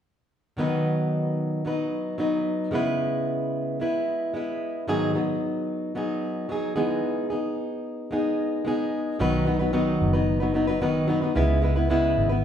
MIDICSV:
0, 0, Header, 1, 3, 480
1, 0, Start_track
1, 0, Key_signature, 5, "major"
1, 0, Tempo, 539568
1, 515, Time_signature, 4, 2, 24, 8
1, 11070, End_track
2, 0, Start_track
2, 0, Title_t, "Steel-string acoustic guitar"
2, 0, Program_c, 0, 25
2, 504, Note_on_c, 0, 47, 66
2, 515, Note_on_c, 0, 51, 67
2, 520, Note_on_c, 0, 54, 68
2, 526, Note_on_c, 0, 59, 67
2, 533, Note_on_c, 0, 63, 64
2, 538, Note_on_c, 0, 71, 67
2, 1455, Note_off_c, 0, 54, 0
2, 1466, Note_on_c, 0, 54, 51
2, 1468, Note_off_c, 0, 47, 0
2, 1471, Note_off_c, 0, 59, 0
2, 1474, Note_off_c, 0, 51, 0
2, 1474, Note_off_c, 0, 63, 0
2, 1474, Note_on_c, 0, 59, 49
2, 1485, Note_off_c, 0, 71, 0
2, 1485, Note_on_c, 0, 63, 50
2, 1489, Note_on_c, 0, 71, 52
2, 1929, Note_off_c, 0, 54, 0
2, 1940, Note_on_c, 0, 54, 55
2, 1945, Note_off_c, 0, 59, 0
2, 1946, Note_off_c, 0, 63, 0
2, 1949, Note_on_c, 0, 59, 56
2, 1956, Note_on_c, 0, 63, 60
2, 1959, Note_off_c, 0, 71, 0
2, 1963, Note_on_c, 0, 71, 60
2, 2411, Note_on_c, 0, 49, 66
2, 2416, Note_off_c, 0, 54, 0
2, 2419, Note_on_c, 0, 56, 63
2, 2426, Note_off_c, 0, 59, 0
2, 2430, Note_on_c, 0, 59, 69
2, 2434, Note_off_c, 0, 63, 0
2, 2438, Note_off_c, 0, 71, 0
2, 2440, Note_on_c, 0, 64, 71
2, 2447, Note_on_c, 0, 71, 74
2, 3374, Note_off_c, 0, 56, 0
2, 3378, Note_on_c, 0, 56, 51
2, 3380, Note_off_c, 0, 49, 0
2, 3383, Note_off_c, 0, 64, 0
2, 3385, Note_off_c, 0, 59, 0
2, 3388, Note_on_c, 0, 59, 50
2, 3393, Note_on_c, 0, 64, 61
2, 3400, Note_off_c, 0, 71, 0
2, 3404, Note_on_c, 0, 71, 57
2, 3854, Note_off_c, 0, 56, 0
2, 3858, Note_on_c, 0, 56, 52
2, 3863, Note_off_c, 0, 59, 0
2, 3865, Note_off_c, 0, 64, 0
2, 3866, Note_on_c, 0, 59, 55
2, 3876, Note_on_c, 0, 64, 52
2, 3879, Note_off_c, 0, 71, 0
2, 3883, Note_on_c, 0, 71, 62
2, 4337, Note_on_c, 0, 44, 74
2, 4339, Note_off_c, 0, 56, 0
2, 4339, Note_on_c, 0, 51, 67
2, 4342, Note_off_c, 0, 59, 0
2, 4343, Note_on_c, 0, 54, 72
2, 4345, Note_off_c, 0, 64, 0
2, 4346, Note_on_c, 0, 59, 70
2, 4348, Note_off_c, 0, 71, 0
2, 4348, Note_on_c, 0, 63, 67
2, 4352, Note_on_c, 0, 68, 83
2, 4559, Note_off_c, 0, 68, 0
2, 4570, Note_off_c, 0, 63, 0
2, 4570, Note_on_c, 0, 68, 36
2, 4577, Note_off_c, 0, 59, 0
2, 4581, Note_on_c, 0, 63, 40
2, 4583, Note_off_c, 0, 44, 0
2, 4584, Note_off_c, 0, 51, 0
2, 4584, Note_off_c, 0, 54, 0
2, 4588, Note_on_c, 0, 59, 36
2, 4595, Note_on_c, 0, 54, 37
2, 5283, Note_off_c, 0, 54, 0
2, 5294, Note_on_c, 0, 54, 51
2, 5295, Note_off_c, 0, 59, 0
2, 5299, Note_on_c, 0, 59, 56
2, 5303, Note_off_c, 0, 63, 0
2, 5307, Note_on_c, 0, 63, 56
2, 5311, Note_off_c, 0, 68, 0
2, 5315, Note_on_c, 0, 68, 61
2, 5762, Note_off_c, 0, 54, 0
2, 5772, Note_on_c, 0, 54, 56
2, 5775, Note_off_c, 0, 59, 0
2, 5779, Note_on_c, 0, 59, 56
2, 5784, Note_off_c, 0, 63, 0
2, 5788, Note_on_c, 0, 63, 56
2, 5795, Note_off_c, 0, 68, 0
2, 5799, Note_on_c, 0, 68, 62
2, 6000, Note_off_c, 0, 68, 0
2, 6006, Note_off_c, 0, 63, 0
2, 6011, Note_off_c, 0, 59, 0
2, 6011, Note_on_c, 0, 68, 59
2, 6017, Note_on_c, 0, 63, 59
2, 6020, Note_off_c, 0, 54, 0
2, 6022, Note_on_c, 0, 59, 55
2, 6024, Note_on_c, 0, 56, 56
2, 6028, Note_on_c, 0, 52, 48
2, 6484, Note_off_c, 0, 68, 0
2, 6495, Note_on_c, 0, 68, 43
2, 6505, Note_off_c, 0, 63, 0
2, 6506, Note_off_c, 0, 56, 0
2, 6508, Note_off_c, 0, 52, 0
2, 6508, Note_on_c, 0, 63, 39
2, 6514, Note_off_c, 0, 59, 0
2, 6517, Note_on_c, 0, 59, 34
2, 7212, Note_on_c, 0, 56, 58
2, 7221, Note_off_c, 0, 59, 0
2, 7221, Note_off_c, 0, 68, 0
2, 7224, Note_off_c, 0, 63, 0
2, 7224, Note_on_c, 0, 59, 56
2, 7228, Note_on_c, 0, 63, 53
2, 7235, Note_on_c, 0, 68, 62
2, 7681, Note_off_c, 0, 56, 0
2, 7692, Note_on_c, 0, 56, 60
2, 7703, Note_off_c, 0, 59, 0
2, 7707, Note_on_c, 0, 59, 63
2, 7709, Note_off_c, 0, 63, 0
2, 7709, Note_off_c, 0, 68, 0
2, 7713, Note_on_c, 0, 63, 60
2, 7719, Note_on_c, 0, 68, 61
2, 8178, Note_on_c, 0, 47, 74
2, 8180, Note_off_c, 0, 56, 0
2, 8182, Note_on_c, 0, 51, 78
2, 8185, Note_off_c, 0, 59, 0
2, 8186, Note_on_c, 0, 54, 74
2, 8188, Note_off_c, 0, 63, 0
2, 8189, Note_on_c, 0, 59, 77
2, 8192, Note_on_c, 0, 63, 82
2, 8194, Note_off_c, 0, 68, 0
2, 8199, Note_on_c, 0, 71, 84
2, 8408, Note_off_c, 0, 54, 0
2, 8416, Note_off_c, 0, 59, 0
2, 8418, Note_on_c, 0, 54, 58
2, 8423, Note_off_c, 0, 47, 0
2, 8423, Note_off_c, 0, 63, 0
2, 8425, Note_off_c, 0, 51, 0
2, 8427, Note_on_c, 0, 59, 52
2, 8433, Note_on_c, 0, 63, 58
2, 8434, Note_off_c, 0, 71, 0
2, 8443, Note_on_c, 0, 71, 57
2, 8523, Note_off_c, 0, 71, 0
2, 8533, Note_off_c, 0, 63, 0
2, 8534, Note_on_c, 0, 71, 51
2, 8540, Note_off_c, 0, 59, 0
2, 8543, Note_off_c, 0, 54, 0
2, 8543, Note_on_c, 0, 63, 45
2, 8550, Note_on_c, 0, 59, 42
2, 8556, Note_on_c, 0, 54, 42
2, 8647, Note_off_c, 0, 54, 0
2, 8649, Note_off_c, 0, 59, 0
2, 8653, Note_on_c, 0, 47, 70
2, 8655, Note_off_c, 0, 63, 0
2, 8656, Note_on_c, 0, 51, 65
2, 8658, Note_off_c, 0, 71, 0
2, 8658, Note_on_c, 0, 54, 78
2, 8660, Note_on_c, 0, 59, 73
2, 8666, Note_on_c, 0, 63, 76
2, 8669, Note_on_c, 0, 71, 75
2, 9003, Note_off_c, 0, 71, 0
2, 9013, Note_off_c, 0, 63, 0
2, 9014, Note_on_c, 0, 71, 47
2, 9018, Note_off_c, 0, 59, 0
2, 9021, Note_off_c, 0, 47, 0
2, 9023, Note_off_c, 0, 51, 0
2, 9024, Note_off_c, 0, 54, 0
2, 9024, Note_on_c, 0, 63, 48
2, 9029, Note_on_c, 0, 59, 48
2, 9037, Note_on_c, 0, 54, 37
2, 9242, Note_off_c, 0, 71, 0
2, 9252, Note_off_c, 0, 63, 0
2, 9253, Note_on_c, 0, 71, 48
2, 9261, Note_off_c, 0, 59, 0
2, 9263, Note_on_c, 0, 63, 41
2, 9267, Note_off_c, 0, 54, 0
2, 9272, Note_on_c, 0, 59, 38
2, 9277, Note_on_c, 0, 54, 42
2, 9366, Note_off_c, 0, 54, 0
2, 9375, Note_off_c, 0, 59, 0
2, 9376, Note_on_c, 0, 54, 51
2, 9381, Note_off_c, 0, 71, 0
2, 9384, Note_off_c, 0, 63, 0
2, 9386, Note_on_c, 0, 59, 55
2, 9394, Note_on_c, 0, 63, 62
2, 9400, Note_on_c, 0, 71, 59
2, 9485, Note_off_c, 0, 71, 0
2, 9496, Note_off_c, 0, 63, 0
2, 9496, Note_on_c, 0, 71, 55
2, 9503, Note_off_c, 0, 54, 0
2, 9504, Note_off_c, 0, 59, 0
2, 9506, Note_on_c, 0, 63, 45
2, 9515, Note_on_c, 0, 59, 45
2, 9518, Note_on_c, 0, 54, 41
2, 9611, Note_off_c, 0, 54, 0
2, 9613, Note_off_c, 0, 59, 0
2, 9613, Note_on_c, 0, 47, 67
2, 9615, Note_off_c, 0, 63, 0
2, 9621, Note_on_c, 0, 51, 76
2, 9622, Note_on_c, 0, 54, 76
2, 9623, Note_off_c, 0, 71, 0
2, 9624, Note_on_c, 0, 59, 79
2, 9626, Note_on_c, 0, 63, 75
2, 9633, Note_on_c, 0, 71, 80
2, 9841, Note_off_c, 0, 54, 0
2, 9852, Note_on_c, 0, 54, 58
2, 9853, Note_off_c, 0, 59, 0
2, 9857, Note_off_c, 0, 63, 0
2, 9862, Note_off_c, 0, 47, 0
2, 9864, Note_on_c, 0, 59, 60
2, 9866, Note_off_c, 0, 51, 0
2, 9866, Note_off_c, 0, 71, 0
2, 9867, Note_on_c, 0, 63, 61
2, 9876, Note_on_c, 0, 71, 64
2, 9965, Note_off_c, 0, 71, 0
2, 9972, Note_off_c, 0, 63, 0
2, 9976, Note_on_c, 0, 71, 46
2, 9981, Note_off_c, 0, 54, 0
2, 9983, Note_on_c, 0, 63, 43
2, 9985, Note_off_c, 0, 59, 0
2, 9996, Note_on_c, 0, 59, 40
2, 9999, Note_on_c, 0, 54, 37
2, 10097, Note_off_c, 0, 59, 0
2, 10097, Note_on_c, 0, 49, 68
2, 10099, Note_off_c, 0, 54, 0
2, 10102, Note_on_c, 0, 56, 78
2, 10103, Note_off_c, 0, 71, 0
2, 10106, Note_off_c, 0, 63, 0
2, 10108, Note_on_c, 0, 59, 75
2, 10110, Note_on_c, 0, 64, 77
2, 10115, Note_on_c, 0, 71, 82
2, 10324, Note_off_c, 0, 56, 0
2, 10330, Note_off_c, 0, 59, 0
2, 10335, Note_on_c, 0, 56, 52
2, 10339, Note_off_c, 0, 64, 0
2, 10340, Note_on_c, 0, 59, 57
2, 10344, Note_off_c, 0, 49, 0
2, 10348, Note_off_c, 0, 71, 0
2, 10350, Note_on_c, 0, 64, 53
2, 10359, Note_on_c, 0, 71, 59
2, 10449, Note_off_c, 0, 71, 0
2, 10459, Note_off_c, 0, 64, 0
2, 10460, Note_on_c, 0, 71, 49
2, 10463, Note_off_c, 0, 56, 0
2, 10466, Note_off_c, 0, 59, 0
2, 10469, Note_on_c, 0, 64, 45
2, 10484, Note_on_c, 0, 59, 41
2, 10579, Note_off_c, 0, 59, 0
2, 10580, Note_on_c, 0, 49, 65
2, 10584, Note_off_c, 0, 64, 0
2, 10586, Note_off_c, 0, 71, 0
2, 10587, Note_on_c, 0, 56, 75
2, 10590, Note_on_c, 0, 59, 68
2, 10595, Note_on_c, 0, 64, 79
2, 10599, Note_on_c, 0, 71, 77
2, 10925, Note_off_c, 0, 71, 0
2, 10936, Note_on_c, 0, 71, 48
2, 10941, Note_off_c, 0, 64, 0
2, 10946, Note_off_c, 0, 49, 0
2, 10950, Note_off_c, 0, 56, 0
2, 10951, Note_off_c, 0, 59, 0
2, 10951, Note_on_c, 0, 64, 46
2, 10960, Note_on_c, 0, 59, 41
2, 11070, Note_off_c, 0, 59, 0
2, 11070, Note_off_c, 0, 64, 0
2, 11070, Note_off_c, 0, 71, 0
2, 11070, End_track
3, 0, Start_track
3, 0, Title_t, "Fingered electric bass"
3, 0, Program_c, 1, 33
3, 8189, Note_on_c, 1, 35, 82
3, 8874, Note_off_c, 1, 35, 0
3, 8908, Note_on_c, 1, 30, 78
3, 9834, Note_off_c, 1, 30, 0
3, 10105, Note_on_c, 1, 37, 80
3, 10793, Note_off_c, 1, 37, 0
3, 10830, Note_on_c, 1, 32, 75
3, 11070, Note_off_c, 1, 32, 0
3, 11070, End_track
0, 0, End_of_file